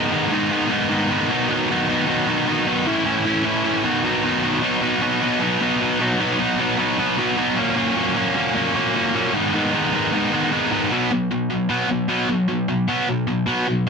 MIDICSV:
0, 0, Header, 1, 2, 480
1, 0, Start_track
1, 0, Tempo, 392927
1, 1824, Time_signature, 4, 2, 24, 8
1, 16973, End_track
2, 0, Start_track
2, 0, Title_t, "Distorted electric guitar"
2, 0, Program_c, 0, 30
2, 0, Note_on_c, 0, 51, 108
2, 0, Note_on_c, 0, 56, 111
2, 0, Note_on_c, 0, 59, 99
2, 0, Note_on_c, 0, 63, 119
2, 126, Note_off_c, 0, 51, 0
2, 131, Note_on_c, 0, 44, 99
2, 132, Note_off_c, 0, 56, 0
2, 141, Note_on_c, 0, 51, 116
2, 147, Note_on_c, 0, 56, 116
2, 150, Note_off_c, 0, 59, 0
2, 151, Note_off_c, 0, 63, 0
2, 155, Note_on_c, 0, 59, 105
2, 156, Note_on_c, 0, 63, 105
2, 365, Note_off_c, 0, 44, 0
2, 373, Note_off_c, 0, 51, 0
2, 380, Note_on_c, 0, 44, 92
2, 381, Note_off_c, 0, 56, 0
2, 388, Note_on_c, 0, 51, 98
2, 394, Note_off_c, 0, 59, 0
2, 396, Note_on_c, 0, 56, 92
2, 399, Note_on_c, 0, 59, 104
2, 402, Note_off_c, 0, 63, 0
2, 407, Note_on_c, 0, 63, 108
2, 596, Note_off_c, 0, 44, 0
2, 606, Note_off_c, 0, 51, 0
2, 611, Note_on_c, 0, 44, 97
2, 612, Note_off_c, 0, 56, 0
2, 614, Note_off_c, 0, 59, 0
2, 621, Note_on_c, 0, 51, 91
2, 624, Note_off_c, 0, 63, 0
2, 626, Note_on_c, 0, 56, 95
2, 629, Note_on_c, 0, 59, 99
2, 639, Note_on_c, 0, 63, 92
2, 832, Note_off_c, 0, 44, 0
2, 843, Note_off_c, 0, 51, 0
2, 846, Note_on_c, 0, 44, 93
2, 851, Note_off_c, 0, 56, 0
2, 853, Note_off_c, 0, 59, 0
2, 858, Note_on_c, 0, 51, 96
2, 865, Note_off_c, 0, 63, 0
2, 866, Note_on_c, 0, 56, 100
2, 868, Note_on_c, 0, 59, 115
2, 880, Note_on_c, 0, 63, 116
2, 1069, Note_off_c, 0, 44, 0
2, 1077, Note_off_c, 0, 51, 0
2, 1082, Note_off_c, 0, 56, 0
2, 1083, Note_on_c, 0, 44, 89
2, 1092, Note_on_c, 0, 51, 90
2, 1096, Note_off_c, 0, 59, 0
2, 1097, Note_on_c, 0, 56, 88
2, 1104, Note_off_c, 0, 63, 0
2, 1111, Note_on_c, 0, 59, 101
2, 1119, Note_on_c, 0, 63, 104
2, 1320, Note_off_c, 0, 44, 0
2, 1325, Note_off_c, 0, 51, 0
2, 1335, Note_on_c, 0, 44, 98
2, 1340, Note_on_c, 0, 51, 94
2, 1341, Note_off_c, 0, 56, 0
2, 1346, Note_off_c, 0, 59, 0
2, 1352, Note_off_c, 0, 63, 0
2, 1355, Note_on_c, 0, 56, 95
2, 1360, Note_on_c, 0, 59, 97
2, 1367, Note_on_c, 0, 63, 94
2, 1564, Note_off_c, 0, 44, 0
2, 1567, Note_off_c, 0, 51, 0
2, 1569, Note_on_c, 0, 47, 95
2, 1575, Note_off_c, 0, 56, 0
2, 1578, Note_off_c, 0, 59, 0
2, 1581, Note_off_c, 0, 63, 0
2, 1581, Note_on_c, 0, 51, 104
2, 1590, Note_on_c, 0, 54, 113
2, 1596, Note_on_c, 0, 59, 120
2, 1606, Note_on_c, 0, 63, 126
2, 1802, Note_off_c, 0, 47, 0
2, 1810, Note_off_c, 0, 51, 0
2, 1816, Note_on_c, 0, 47, 105
2, 1818, Note_off_c, 0, 54, 0
2, 1824, Note_off_c, 0, 59, 0
2, 1825, Note_on_c, 0, 51, 110
2, 1830, Note_off_c, 0, 63, 0
2, 1833, Note_on_c, 0, 54, 109
2, 1839, Note_on_c, 0, 59, 107
2, 1845, Note_on_c, 0, 63, 108
2, 2058, Note_off_c, 0, 47, 0
2, 2068, Note_off_c, 0, 51, 0
2, 2073, Note_on_c, 0, 47, 96
2, 2078, Note_off_c, 0, 54, 0
2, 2082, Note_off_c, 0, 59, 0
2, 2083, Note_on_c, 0, 51, 100
2, 2090, Note_off_c, 0, 63, 0
2, 2092, Note_on_c, 0, 54, 116
2, 2096, Note_on_c, 0, 59, 127
2, 2104, Note_on_c, 0, 63, 121
2, 2292, Note_off_c, 0, 47, 0
2, 2302, Note_off_c, 0, 51, 0
2, 2303, Note_off_c, 0, 54, 0
2, 2307, Note_on_c, 0, 47, 98
2, 2315, Note_off_c, 0, 59, 0
2, 2317, Note_on_c, 0, 51, 89
2, 2318, Note_on_c, 0, 54, 103
2, 2324, Note_off_c, 0, 63, 0
2, 2330, Note_on_c, 0, 59, 104
2, 2339, Note_on_c, 0, 63, 111
2, 2521, Note_off_c, 0, 47, 0
2, 2534, Note_off_c, 0, 51, 0
2, 2535, Note_on_c, 0, 47, 88
2, 2536, Note_off_c, 0, 54, 0
2, 2545, Note_off_c, 0, 59, 0
2, 2548, Note_on_c, 0, 51, 100
2, 2551, Note_on_c, 0, 54, 91
2, 2555, Note_off_c, 0, 63, 0
2, 2560, Note_on_c, 0, 59, 97
2, 2569, Note_on_c, 0, 63, 101
2, 2763, Note_off_c, 0, 47, 0
2, 2767, Note_off_c, 0, 51, 0
2, 2774, Note_off_c, 0, 54, 0
2, 2778, Note_on_c, 0, 47, 105
2, 2782, Note_on_c, 0, 51, 99
2, 2783, Note_off_c, 0, 59, 0
2, 2789, Note_on_c, 0, 54, 99
2, 2792, Note_off_c, 0, 63, 0
2, 2798, Note_on_c, 0, 59, 103
2, 2806, Note_on_c, 0, 63, 104
2, 2997, Note_off_c, 0, 47, 0
2, 3006, Note_off_c, 0, 51, 0
2, 3012, Note_on_c, 0, 47, 105
2, 3013, Note_off_c, 0, 54, 0
2, 3021, Note_off_c, 0, 59, 0
2, 3021, Note_on_c, 0, 51, 84
2, 3027, Note_off_c, 0, 63, 0
2, 3027, Note_on_c, 0, 54, 95
2, 3035, Note_on_c, 0, 59, 99
2, 3041, Note_on_c, 0, 63, 101
2, 3241, Note_off_c, 0, 47, 0
2, 3248, Note_off_c, 0, 51, 0
2, 3256, Note_on_c, 0, 47, 83
2, 3258, Note_off_c, 0, 54, 0
2, 3262, Note_on_c, 0, 51, 91
2, 3265, Note_off_c, 0, 59, 0
2, 3270, Note_off_c, 0, 63, 0
2, 3273, Note_on_c, 0, 54, 100
2, 3279, Note_on_c, 0, 59, 102
2, 3285, Note_on_c, 0, 63, 96
2, 3485, Note_off_c, 0, 47, 0
2, 3488, Note_off_c, 0, 51, 0
2, 3493, Note_off_c, 0, 54, 0
2, 3496, Note_off_c, 0, 59, 0
2, 3496, Note_on_c, 0, 45, 99
2, 3499, Note_off_c, 0, 63, 0
2, 3507, Note_on_c, 0, 52, 104
2, 3511, Note_on_c, 0, 57, 101
2, 3522, Note_on_c, 0, 61, 114
2, 3523, Note_on_c, 0, 64, 105
2, 3708, Note_off_c, 0, 45, 0
2, 3721, Note_off_c, 0, 52, 0
2, 3722, Note_on_c, 0, 45, 97
2, 3723, Note_off_c, 0, 57, 0
2, 3730, Note_off_c, 0, 61, 0
2, 3736, Note_on_c, 0, 52, 92
2, 3738, Note_on_c, 0, 57, 104
2, 3740, Note_off_c, 0, 64, 0
2, 3745, Note_on_c, 0, 61, 106
2, 3754, Note_on_c, 0, 64, 116
2, 3950, Note_off_c, 0, 45, 0
2, 3960, Note_off_c, 0, 52, 0
2, 3964, Note_on_c, 0, 45, 103
2, 3968, Note_off_c, 0, 57, 0
2, 3975, Note_on_c, 0, 52, 107
2, 3977, Note_off_c, 0, 61, 0
2, 3982, Note_off_c, 0, 64, 0
2, 3983, Note_on_c, 0, 57, 113
2, 3992, Note_on_c, 0, 61, 106
2, 3996, Note_on_c, 0, 64, 114
2, 4184, Note_off_c, 0, 45, 0
2, 4196, Note_off_c, 0, 52, 0
2, 4199, Note_on_c, 0, 45, 94
2, 4201, Note_off_c, 0, 57, 0
2, 4208, Note_off_c, 0, 61, 0
2, 4211, Note_on_c, 0, 52, 109
2, 4216, Note_on_c, 0, 57, 98
2, 4218, Note_off_c, 0, 64, 0
2, 4222, Note_on_c, 0, 61, 90
2, 4232, Note_on_c, 0, 64, 102
2, 4430, Note_off_c, 0, 45, 0
2, 4437, Note_off_c, 0, 52, 0
2, 4444, Note_on_c, 0, 45, 78
2, 4445, Note_off_c, 0, 57, 0
2, 4452, Note_on_c, 0, 52, 91
2, 4453, Note_off_c, 0, 61, 0
2, 4459, Note_off_c, 0, 64, 0
2, 4460, Note_on_c, 0, 57, 100
2, 4468, Note_on_c, 0, 61, 103
2, 4474, Note_on_c, 0, 64, 110
2, 4677, Note_off_c, 0, 45, 0
2, 4682, Note_off_c, 0, 52, 0
2, 4682, Note_on_c, 0, 47, 92
2, 4686, Note_off_c, 0, 57, 0
2, 4690, Note_off_c, 0, 61, 0
2, 4693, Note_off_c, 0, 64, 0
2, 4694, Note_on_c, 0, 51, 98
2, 4700, Note_on_c, 0, 54, 97
2, 4702, Note_on_c, 0, 59, 93
2, 4712, Note_on_c, 0, 63, 104
2, 4914, Note_off_c, 0, 47, 0
2, 4924, Note_off_c, 0, 51, 0
2, 4928, Note_on_c, 0, 47, 98
2, 4930, Note_off_c, 0, 54, 0
2, 4939, Note_off_c, 0, 59, 0
2, 4939, Note_on_c, 0, 51, 92
2, 4944, Note_on_c, 0, 54, 96
2, 4945, Note_off_c, 0, 63, 0
2, 4953, Note_on_c, 0, 59, 93
2, 4960, Note_on_c, 0, 63, 99
2, 5143, Note_off_c, 0, 47, 0
2, 5158, Note_on_c, 0, 47, 77
2, 5160, Note_off_c, 0, 51, 0
2, 5163, Note_off_c, 0, 54, 0
2, 5173, Note_off_c, 0, 59, 0
2, 5175, Note_on_c, 0, 51, 86
2, 5178, Note_off_c, 0, 63, 0
2, 5178, Note_on_c, 0, 54, 87
2, 5188, Note_on_c, 0, 59, 83
2, 5192, Note_on_c, 0, 63, 92
2, 5387, Note_off_c, 0, 47, 0
2, 5395, Note_off_c, 0, 51, 0
2, 5402, Note_on_c, 0, 47, 90
2, 5407, Note_off_c, 0, 54, 0
2, 5410, Note_on_c, 0, 51, 86
2, 5414, Note_off_c, 0, 59, 0
2, 5419, Note_off_c, 0, 63, 0
2, 5421, Note_on_c, 0, 54, 90
2, 5428, Note_on_c, 0, 59, 84
2, 5433, Note_on_c, 0, 63, 103
2, 5632, Note_off_c, 0, 47, 0
2, 5640, Note_off_c, 0, 51, 0
2, 5643, Note_off_c, 0, 54, 0
2, 5646, Note_on_c, 0, 47, 112
2, 5650, Note_off_c, 0, 59, 0
2, 5652, Note_off_c, 0, 63, 0
2, 5658, Note_on_c, 0, 54, 108
2, 5662, Note_on_c, 0, 59, 97
2, 5676, Note_on_c, 0, 63, 100
2, 5872, Note_off_c, 0, 47, 0
2, 5877, Note_on_c, 0, 47, 99
2, 5884, Note_off_c, 0, 54, 0
2, 5887, Note_off_c, 0, 59, 0
2, 5889, Note_on_c, 0, 54, 105
2, 5892, Note_on_c, 0, 59, 106
2, 5898, Note_off_c, 0, 63, 0
2, 5903, Note_on_c, 0, 63, 110
2, 6122, Note_off_c, 0, 47, 0
2, 6127, Note_on_c, 0, 47, 100
2, 6131, Note_off_c, 0, 54, 0
2, 6136, Note_off_c, 0, 59, 0
2, 6136, Note_on_c, 0, 54, 87
2, 6141, Note_off_c, 0, 63, 0
2, 6141, Note_on_c, 0, 59, 114
2, 6146, Note_on_c, 0, 63, 99
2, 6360, Note_off_c, 0, 47, 0
2, 6374, Note_on_c, 0, 47, 86
2, 6375, Note_off_c, 0, 59, 0
2, 6379, Note_off_c, 0, 54, 0
2, 6384, Note_off_c, 0, 63, 0
2, 6384, Note_on_c, 0, 54, 91
2, 6389, Note_on_c, 0, 59, 99
2, 6398, Note_on_c, 0, 63, 114
2, 6591, Note_off_c, 0, 47, 0
2, 6605, Note_on_c, 0, 47, 101
2, 6608, Note_off_c, 0, 59, 0
2, 6613, Note_off_c, 0, 54, 0
2, 6618, Note_off_c, 0, 63, 0
2, 6618, Note_on_c, 0, 54, 107
2, 6623, Note_on_c, 0, 59, 100
2, 6632, Note_on_c, 0, 63, 121
2, 6838, Note_off_c, 0, 47, 0
2, 6852, Note_on_c, 0, 47, 83
2, 6853, Note_off_c, 0, 59, 0
2, 6858, Note_off_c, 0, 54, 0
2, 6863, Note_on_c, 0, 54, 82
2, 6866, Note_off_c, 0, 63, 0
2, 6868, Note_on_c, 0, 59, 101
2, 6880, Note_on_c, 0, 63, 102
2, 7072, Note_off_c, 0, 47, 0
2, 7087, Note_on_c, 0, 47, 91
2, 7092, Note_off_c, 0, 59, 0
2, 7096, Note_off_c, 0, 54, 0
2, 7101, Note_on_c, 0, 54, 79
2, 7104, Note_off_c, 0, 63, 0
2, 7107, Note_on_c, 0, 59, 88
2, 7119, Note_on_c, 0, 63, 85
2, 7315, Note_off_c, 0, 47, 0
2, 7330, Note_on_c, 0, 47, 90
2, 7334, Note_off_c, 0, 54, 0
2, 7334, Note_off_c, 0, 59, 0
2, 7339, Note_off_c, 0, 63, 0
2, 7339, Note_on_c, 0, 54, 100
2, 7349, Note_on_c, 0, 59, 96
2, 7354, Note_on_c, 0, 63, 99
2, 7547, Note_off_c, 0, 47, 0
2, 7562, Note_on_c, 0, 47, 96
2, 7565, Note_off_c, 0, 59, 0
2, 7571, Note_off_c, 0, 54, 0
2, 7572, Note_off_c, 0, 63, 0
2, 7576, Note_on_c, 0, 54, 112
2, 7580, Note_on_c, 0, 59, 115
2, 7587, Note_on_c, 0, 63, 122
2, 7785, Note_off_c, 0, 47, 0
2, 7800, Note_on_c, 0, 47, 94
2, 7806, Note_off_c, 0, 54, 0
2, 7810, Note_off_c, 0, 59, 0
2, 7811, Note_off_c, 0, 63, 0
2, 7811, Note_on_c, 0, 54, 117
2, 7824, Note_on_c, 0, 59, 115
2, 7826, Note_on_c, 0, 63, 117
2, 8039, Note_off_c, 0, 47, 0
2, 8050, Note_off_c, 0, 54, 0
2, 8050, Note_off_c, 0, 59, 0
2, 8054, Note_on_c, 0, 47, 82
2, 8055, Note_on_c, 0, 54, 104
2, 8060, Note_off_c, 0, 63, 0
2, 8064, Note_on_c, 0, 59, 105
2, 8074, Note_on_c, 0, 63, 98
2, 8259, Note_off_c, 0, 47, 0
2, 8274, Note_on_c, 0, 47, 94
2, 8280, Note_off_c, 0, 54, 0
2, 8283, Note_off_c, 0, 59, 0
2, 8285, Note_on_c, 0, 54, 93
2, 8290, Note_off_c, 0, 63, 0
2, 8297, Note_on_c, 0, 59, 107
2, 8304, Note_on_c, 0, 63, 91
2, 8512, Note_off_c, 0, 47, 0
2, 8515, Note_off_c, 0, 54, 0
2, 8525, Note_off_c, 0, 59, 0
2, 8526, Note_on_c, 0, 47, 92
2, 8530, Note_on_c, 0, 54, 95
2, 8537, Note_off_c, 0, 63, 0
2, 8540, Note_on_c, 0, 59, 119
2, 8551, Note_on_c, 0, 63, 104
2, 8750, Note_off_c, 0, 47, 0
2, 8760, Note_off_c, 0, 54, 0
2, 8765, Note_on_c, 0, 47, 76
2, 8771, Note_off_c, 0, 59, 0
2, 8773, Note_off_c, 0, 63, 0
2, 8775, Note_on_c, 0, 54, 91
2, 8786, Note_on_c, 0, 59, 94
2, 8788, Note_on_c, 0, 63, 96
2, 8982, Note_off_c, 0, 47, 0
2, 8992, Note_off_c, 0, 54, 0
2, 8996, Note_on_c, 0, 47, 84
2, 9002, Note_off_c, 0, 59, 0
2, 9007, Note_on_c, 0, 54, 86
2, 9009, Note_off_c, 0, 63, 0
2, 9017, Note_on_c, 0, 59, 94
2, 9024, Note_on_c, 0, 63, 107
2, 9224, Note_off_c, 0, 47, 0
2, 9226, Note_off_c, 0, 54, 0
2, 9229, Note_on_c, 0, 46, 96
2, 9240, Note_on_c, 0, 54, 95
2, 9241, Note_off_c, 0, 59, 0
2, 9245, Note_off_c, 0, 63, 0
2, 9250, Note_on_c, 0, 58, 120
2, 9256, Note_on_c, 0, 61, 114
2, 9452, Note_off_c, 0, 46, 0
2, 9464, Note_off_c, 0, 54, 0
2, 9467, Note_on_c, 0, 46, 96
2, 9469, Note_off_c, 0, 58, 0
2, 9475, Note_off_c, 0, 61, 0
2, 9479, Note_on_c, 0, 54, 107
2, 9483, Note_on_c, 0, 58, 114
2, 9490, Note_on_c, 0, 61, 121
2, 9703, Note_off_c, 0, 46, 0
2, 9714, Note_off_c, 0, 54, 0
2, 9718, Note_on_c, 0, 46, 97
2, 9719, Note_off_c, 0, 58, 0
2, 9726, Note_off_c, 0, 61, 0
2, 9729, Note_on_c, 0, 54, 107
2, 9733, Note_on_c, 0, 58, 104
2, 9740, Note_on_c, 0, 61, 111
2, 9948, Note_off_c, 0, 46, 0
2, 9957, Note_off_c, 0, 54, 0
2, 9961, Note_off_c, 0, 58, 0
2, 9963, Note_on_c, 0, 46, 93
2, 9965, Note_off_c, 0, 61, 0
2, 9972, Note_on_c, 0, 54, 105
2, 9976, Note_on_c, 0, 58, 111
2, 9980, Note_on_c, 0, 61, 97
2, 10182, Note_off_c, 0, 46, 0
2, 10193, Note_off_c, 0, 54, 0
2, 10197, Note_on_c, 0, 46, 87
2, 10201, Note_off_c, 0, 58, 0
2, 10207, Note_off_c, 0, 61, 0
2, 10208, Note_on_c, 0, 54, 90
2, 10215, Note_on_c, 0, 58, 109
2, 10222, Note_on_c, 0, 61, 104
2, 10423, Note_off_c, 0, 46, 0
2, 10433, Note_off_c, 0, 54, 0
2, 10437, Note_on_c, 0, 46, 106
2, 10441, Note_off_c, 0, 58, 0
2, 10447, Note_on_c, 0, 54, 97
2, 10448, Note_off_c, 0, 61, 0
2, 10456, Note_on_c, 0, 58, 99
2, 10462, Note_on_c, 0, 61, 111
2, 10665, Note_off_c, 0, 46, 0
2, 10675, Note_off_c, 0, 54, 0
2, 10679, Note_on_c, 0, 46, 77
2, 10684, Note_off_c, 0, 58, 0
2, 10689, Note_on_c, 0, 54, 94
2, 10691, Note_off_c, 0, 61, 0
2, 10699, Note_on_c, 0, 58, 93
2, 10706, Note_on_c, 0, 61, 96
2, 10907, Note_off_c, 0, 46, 0
2, 10913, Note_off_c, 0, 54, 0
2, 10918, Note_off_c, 0, 58, 0
2, 10922, Note_on_c, 0, 46, 81
2, 10928, Note_off_c, 0, 61, 0
2, 10928, Note_on_c, 0, 54, 88
2, 10932, Note_on_c, 0, 58, 87
2, 10943, Note_on_c, 0, 61, 86
2, 11147, Note_off_c, 0, 46, 0
2, 11155, Note_off_c, 0, 54, 0
2, 11162, Note_on_c, 0, 46, 92
2, 11165, Note_off_c, 0, 58, 0
2, 11169, Note_on_c, 0, 54, 98
2, 11170, Note_off_c, 0, 61, 0
2, 11180, Note_on_c, 0, 58, 94
2, 11185, Note_on_c, 0, 61, 100
2, 11392, Note_off_c, 0, 46, 0
2, 11396, Note_off_c, 0, 54, 0
2, 11398, Note_on_c, 0, 44, 104
2, 11401, Note_off_c, 0, 58, 0
2, 11403, Note_off_c, 0, 61, 0
2, 11410, Note_on_c, 0, 51, 104
2, 11413, Note_on_c, 0, 56, 111
2, 11423, Note_on_c, 0, 59, 100
2, 11430, Note_on_c, 0, 63, 107
2, 11628, Note_off_c, 0, 44, 0
2, 11640, Note_off_c, 0, 51, 0
2, 11642, Note_on_c, 0, 44, 102
2, 11650, Note_off_c, 0, 56, 0
2, 11655, Note_on_c, 0, 51, 92
2, 11657, Note_off_c, 0, 59, 0
2, 11663, Note_off_c, 0, 63, 0
2, 11665, Note_on_c, 0, 56, 111
2, 11672, Note_on_c, 0, 59, 112
2, 11678, Note_on_c, 0, 63, 115
2, 11871, Note_off_c, 0, 44, 0
2, 11881, Note_off_c, 0, 51, 0
2, 11886, Note_on_c, 0, 44, 97
2, 11892, Note_off_c, 0, 56, 0
2, 11896, Note_on_c, 0, 51, 91
2, 11899, Note_off_c, 0, 59, 0
2, 11903, Note_off_c, 0, 63, 0
2, 11907, Note_on_c, 0, 56, 95
2, 11913, Note_on_c, 0, 59, 99
2, 11918, Note_on_c, 0, 63, 109
2, 12119, Note_off_c, 0, 44, 0
2, 12128, Note_off_c, 0, 51, 0
2, 12134, Note_on_c, 0, 44, 81
2, 12139, Note_off_c, 0, 56, 0
2, 12143, Note_on_c, 0, 51, 86
2, 12146, Note_off_c, 0, 59, 0
2, 12151, Note_off_c, 0, 63, 0
2, 12154, Note_on_c, 0, 56, 86
2, 12160, Note_on_c, 0, 59, 97
2, 12166, Note_on_c, 0, 63, 104
2, 12352, Note_off_c, 0, 44, 0
2, 12365, Note_off_c, 0, 51, 0
2, 12367, Note_on_c, 0, 44, 100
2, 12375, Note_off_c, 0, 56, 0
2, 12377, Note_off_c, 0, 59, 0
2, 12379, Note_on_c, 0, 51, 104
2, 12388, Note_off_c, 0, 63, 0
2, 12389, Note_on_c, 0, 56, 109
2, 12392, Note_on_c, 0, 59, 103
2, 12402, Note_on_c, 0, 63, 98
2, 12594, Note_off_c, 0, 44, 0
2, 12604, Note_off_c, 0, 51, 0
2, 12608, Note_on_c, 0, 44, 86
2, 12610, Note_off_c, 0, 56, 0
2, 12618, Note_on_c, 0, 51, 80
2, 12621, Note_off_c, 0, 59, 0
2, 12621, Note_off_c, 0, 63, 0
2, 12625, Note_on_c, 0, 56, 93
2, 12635, Note_on_c, 0, 63, 93
2, 12636, Note_on_c, 0, 59, 95
2, 12830, Note_off_c, 0, 44, 0
2, 12837, Note_off_c, 0, 51, 0
2, 12845, Note_off_c, 0, 56, 0
2, 12845, Note_on_c, 0, 44, 73
2, 12850, Note_off_c, 0, 59, 0
2, 12852, Note_on_c, 0, 51, 87
2, 12860, Note_off_c, 0, 63, 0
2, 12860, Note_on_c, 0, 56, 87
2, 12865, Note_on_c, 0, 59, 89
2, 12874, Note_on_c, 0, 63, 100
2, 13070, Note_off_c, 0, 44, 0
2, 13080, Note_off_c, 0, 51, 0
2, 13084, Note_on_c, 0, 44, 105
2, 13088, Note_off_c, 0, 56, 0
2, 13094, Note_on_c, 0, 51, 97
2, 13095, Note_off_c, 0, 59, 0
2, 13096, Note_off_c, 0, 63, 0
2, 13103, Note_on_c, 0, 56, 104
2, 13109, Note_on_c, 0, 59, 106
2, 13111, Note_on_c, 0, 63, 104
2, 13313, Note_off_c, 0, 44, 0
2, 13319, Note_off_c, 0, 51, 0
2, 13323, Note_off_c, 0, 56, 0
2, 13326, Note_off_c, 0, 59, 0
2, 13327, Note_off_c, 0, 63, 0
2, 13332, Note_on_c, 0, 47, 90
2, 13338, Note_on_c, 0, 54, 99
2, 13346, Note_on_c, 0, 59, 100
2, 13557, Note_off_c, 0, 47, 0
2, 13560, Note_off_c, 0, 54, 0
2, 13565, Note_off_c, 0, 59, 0
2, 13572, Note_on_c, 0, 47, 79
2, 13574, Note_on_c, 0, 54, 93
2, 13788, Note_off_c, 0, 47, 0
2, 13789, Note_off_c, 0, 54, 0
2, 13813, Note_on_c, 0, 47, 86
2, 13818, Note_on_c, 0, 54, 84
2, 14029, Note_off_c, 0, 47, 0
2, 14031, Note_off_c, 0, 54, 0
2, 14046, Note_on_c, 0, 47, 67
2, 14052, Note_on_c, 0, 54, 85
2, 14266, Note_off_c, 0, 47, 0
2, 14269, Note_off_c, 0, 54, 0
2, 14281, Note_on_c, 0, 47, 81
2, 14294, Note_on_c, 0, 54, 84
2, 14304, Note_on_c, 0, 59, 97
2, 14505, Note_off_c, 0, 47, 0
2, 14513, Note_off_c, 0, 54, 0
2, 14519, Note_on_c, 0, 47, 80
2, 14524, Note_off_c, 0, 59, 0
2, 14528, Note_on_c, 0, 54, 79
2, 14743, Note_off_c, 0, 47, 0
2, 14747, Note_off_c, 0, 54, 0
2, 14765, Note_on_c, 0, 47, 90
2, 14776, Note_on_c, 0, 54, 87
2, 14784, Note_on_c, 0, 59, 93
2, 14996, Note_off_c, 0, 47, 0
2, 15001, Note_off_c, 0, 54, 0
2, 15006, Note_off_c, 0, 59, 0
2, 15019, Note_on_c, 0, 47, 75
2, 15029, Note_on_c, 0, 54, 86
2, 15234, Note_off_c, 0, 47, 0
2, 15239, Note_off_c, 0, 54, 0
2, 15248, Note_on_c, 0, 47, 76
2, 15254, Note_on_c, 0, 54, 94
2, 15468, Note_off_c, 0, 47, 0
2, 15472, Note_off_c, 0, 54, 0
2, 15493, Note_on_c, 0, 47, 81
2, 15501, Note_on_c, 0, 54, 85
2, 15712, Note_off_c, 0, 47, 0
2, 15715, Note_off_c, 0, 54, 0
2, 15731, Note_on_c, 0, 47, 98
2, 15743, Note_on_c, 0, 54, 99
2, 15753, Note_on_c, 0, 59, 117
2, 15960, Note_off_c, 0, 47, 0
2, 15967, Note_off_c, 0, 54, 0
2, 15971, Note_off_c, 0, 59, 0
2, 15979, Note_on_c, 0, 47, 80
2, 15980, Note_on_c, 0, 54, 80
2, 16195, Note_off_c, 0, 47, 0
2, 16196, Note_off_c, 0, 54, 0
2, 16211, Note_on_c, 0, 47, 82
2, 16221, Note_on_c, 0, 54, 81
2, 16432, Note_off_c, 0, 47, 0
2, 16437, Note_off_c, 0, 54, 0
2, 16444, Note_on_c, 0, 47, 90
2, 16457, Note_on_c, 0, 54, 97
2, 16461, Note_on_c, 0, 59, 98
2, 16678, Note_off_c, 0, 47, 0
2, 16685, Note_off_c, 0, 54, 0
2, 16687, Note_off_c, 0, 59, 0
2, 16702, Note_on_c, 0, 47, 68
2, 16706, Note_on_c, 0, 54, 85
2, 16918, Note_off_c, 0, 47, 0
2, 16920, Note_off_c, 0, 54, 0
2, 16973, End_track
0, 0, End_of_file